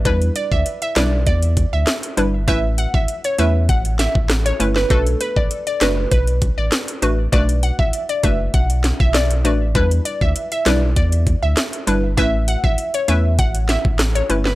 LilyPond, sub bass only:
\new Staff \with { instrumentName = "Sub bass" } { \clef bass \time 4/4 \key b \minor \tempo 4 = 99 e,8 r16 d,16 r8 b,,8 e,8. d,16 r8 g,,8 | a,,8. a,,16 r8 e,8 a,,8. a,,8. g,,8 | b,,8 r16 a,,16 r8 fis,,8 b,,8. a,,16 r8 a,,8 | b,,8. a,,16 r8 fis,,8 b,,8. b,,8. a,,8 |
e,8 r16 d,16 r8 b,,8 e,8. d,16 r8 g,,8 | a,,8. a,,16 r8 e,8 a,,8. a,,8. g,,8 | }